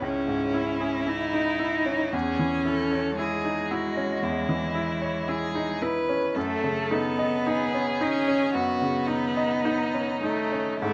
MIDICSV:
0, 0, Header, 1, 4, 480
1, 0, Start_track
1, 0, Tempo, 1054482
1, 972, Time_signature, 4, 2, 24, 8
1, 2893, Tempo, 1094891
1, 4333, Tempo, 1176471
1, 4860, End_track
2, 0, Start_track
2, 0, Title_t, "Violin"
2, 0, Program_c, 0, 40
2, 9, Note_on_c, 0, 64, 41
2, 972, Note_on_c, 0, 68, 37
2, 978, Note_off_c, 0, 64, 0
2, 1205, Note_off_c, 0, 68, 0
2, 1208, Note_on_c, 0, 69, 43
2, 1444, Note_off_c, 0, 69, 0
2, 1447, Note_on_c, 0, 68, 41
2, 1686, Note_on_c, 0, 66, 43
2, 1693, Note_off_c, 0, 68, 0
2, 1926, Note_on_c, 0, 64, 42
2, 1933, Note_off_c, 0, 66, 0
2, 2403, Note_on_c, 0, 68, 49
2, 2410, Note_off_c, 0, 64, 0
2, 2647, Note_on_c, 0, 71, 52
2, 2654, Note_off_c, 0, 68, 0
2, 2887, Note_on_c, 0, 69, 43
2, 2894, Note_off_c, 0, 71, 0
2, 3375, Note_on_c, 0, 68, 52
2, 3382, Note_off_c, 0, 69, 0
2, 3846, Note_off_c, 0, 68, 0
2, 3848, Note_on_c, 0, 66, 49
2, 4081, Note_on_c, 0, 63, 50
2, 4088, Note_off_c, 0, 66, 0
2, 4808, Note_off_c, 0, 63, 0
2, 4810, Note_on_c, 0, 64, 42
2, 4860, Note_off_c, 0, 64, 0
2, 4860, End_track
3, 0, Start_track
3, 0, Title_t, "Grand piano"
3, 0, Program_c, 1, 0
3, 0, Control_c, 1, 64, 127
3, 0, Note_on_c, 1, 44, 27
3, 0, Note_on_c, 1, 61, 28
3, 0, Note_on_c, 1, 63, 24
3, 0, Note_on_c, 1, 64, 31
3, 0, Note_on_c, 1, 68, 29
3, 8, Note_on_c, 1, 37, 31
3, 82, Note_off_c, 1, 61, 0
3, 127, Note_off_c, 1, 44, 0
3, 127, Note_on_c, 1, 44, 26
3, 245, Note_off_c, 1, 64, 0
3, 245, Note_on_c, 1, 64, 31
3, 321, Note_off_c, 1, 44, 0
3, 366, Note_off_c, 1, 68, 0
3, 366, Note_on_c, 1, 68, 30
3, 440, Note_off_c, 1, 64, 0
3, 485, Note_on_c, 1, 64, 31
3, 560, Note_off_c, 1, 68, 0
3, 607, Note_off_c, 1, 63, 0
3, 607, Note_on_c, 1, 63, 30
3, 680, Note_off_c, 1, 64, 0
3, 725, Note_on_c, 1, 64, 31
3, 729, Note_off_c, 1, 63, 0
3, 845, Note_on_c, 1, 61, 31
3, 921, Note_off_c, 1, 64, 0
3, 951, Note_off_c, 1, 37, 0
3, 968, Note_on_c, 1, 40, 39
3, 969, Note_off_c, 1, 61, 0
3, 980, Control_c, 1, 64, 0
3, 1044, Control_c, 1, 64, 127
3, 1090, Note_on_c, 1, 52, 29
3, 1207, Note_on_c, 1, 64, 30
3, 1284, Note_off_c, 1, 52, 0
3, 1330, Note_on_c, 1, 73, 33
3, 1402, Note_off_c, 1, 64, 0
3, 1451, Note_on_c, 1, 64, 34
3, 1523, Note_off_c, 1, 73, 0
3, 1569, Note_on_c, 1, 63, 27
3, 1643, Note_off_c, 1, 64, 0
3, 1689, Note_on_c, 1, 64, 34
3, 1690, Note_off_c, 1, 63, 0
3, 1807, Note_on_c, 1, 61, 32
3, 1881, Note_off_c, 1, 64, 0
3, 1910, Note_off_c, 1, 40, 0
3, 1923, Note_on_c, 1, 40, 37
3, 1999, Note_off_c, 1, 61, 0
3, 2044, Note_on_c, 1, 52, 30
3, 2163, Note_on_c, 1, 64, 35
3, 2236, Note_off_c, 1, 52, 0
3, 2284, Note_on_c, 1, 73, 35
3, 2356, Note_off_c, 1, 64, 0
3, 2406, Note_on_c, 1, 64, 36
3, 2476, Note_off_c, 1, 73, 0
3, 2527, Note_on_c, 1, 63, 31
3, 2599, Note_off_c, 1, 64, 0
3, 2648, Note_off_c, 1, 63, 0
3, 2649, Note_on_c, 1, 64, 38
3, 2772, Note_on_c, 1, 61, 35
3, 2844, Note_off_c, 1, 64, 0
3, 2872, Note_off_c, 1, 40, 0
3, 2894, Note_off_c, 1, 61, 0
3, 2894, Note_on_c, 1, 42, 46
3, 2902, Control_c, 1, 64, 0
3, 2975, Control_c, 1, 64, 127
3, 3016, Note_on_c, 1, 49, 35
3, 3135, Note_on_c, 1, 63, 35
3, 3209, Note_off_c, 1, 49, 0
3, 3258, Note_on_c, 1, 75, 37
3, 3329, Note_off_c, 1, 63, 0
3, 3380, Note_on_c, 1, 63, 38
3, 3451, Note_off_c, 1, 75, 0
3, 3501, Note_on_c, 1, 61, 32
3, 3571, Note_off_c, 1, 63, 0
3, 3618, Note_on_c, 1, 63, 39
3, 3619, Note_off_c, 1, 61, 0
3, 3736, Note_on_c, 1, 61, 36
3, 3805, Note_off_c, 1, 63, 0
3, 3834, Note_off_c, 1, 42, 0
3, 3854, Note_on_c, 1, 42, 38
3, 3922, Note_off_c, 1, 61, 0
3, 3971, Note_on_c, 1, 49, 34
3, 4087, Note_on_c, 1, 63, 35
3, 4161, Note_off_c, 1, 49, 0
3, 4214, Note_on_c, 1, 75, 35
3, 4283, Note_off_c, 1, 63, 0
3, 4337, Note_on_c, 1, 63, 37
3, 4406, Note_off_c, 1, 75, 0
3, 4455, Note_on_c, 1, 61, 32
3, 4525, Note_off_c, 1, 63, 0
3, 4573, Note_off_c, 1, 61, 0
3, 4574, Note_on_c, 1, 63, 34
3, 4692, Note_on_c, 1, 61, 33
3, 4766, Note_off_c, 1, 63, 0
3, 4798, Note_off_c, 1, 42, 0
3, 4813, Note_off_c, 1, 61, 0
3, 4815, Note_on_c, 1, 44, 42
3, 4820, Control_c, 1, 64, 0
3, 4860, Note_off_c, 1, 44, 0
3, 4860, End_track
4, 0, Start_track
4, 0, Title_t, "Cello"
4, 0, Program_c, 2, 42
4, 15, Note_on_c, 2, 61, 45
4, 493, Note_on_c, 2, 63, 55
4, 500, Note_off_c, 2, 61, 0
4, 969, Note_on_c, 2, 61, 59
4, 976, Note_off_c, 2, 63, 0
4, 1450, Note_off_c, 2, 61, 0
4, 1452, Note_on_c, 2, 56, 51
4, 2629, Note_off_c, 2, 56, 0
4, 2897, Note_on_c, 2, 57, 63
4, 3140, Note_on_c, 2, 59, 63
4, 3147, Note_off_c, 2, 57, 0
4, 3625, Note_on_c, 2, 61, 63
4, 3631, Note_off_c, 2, 59, 0
4, 3854, Note_on_c, 2, 59, 67
4, 3861, Note_off_c, 2, 61, 0
4, 4572, Note_off_c, 2, 59, 0
4, 4574, Note_on_c, 2, 57, 58
4, 4810, Note_off_c, 2, 57, 0
4, 4814, Note_on_c, 2, 57, 66
4, 4860, Note_off_c, 2, 57, 0
4, 4860, End_track
0, 0, End_of_file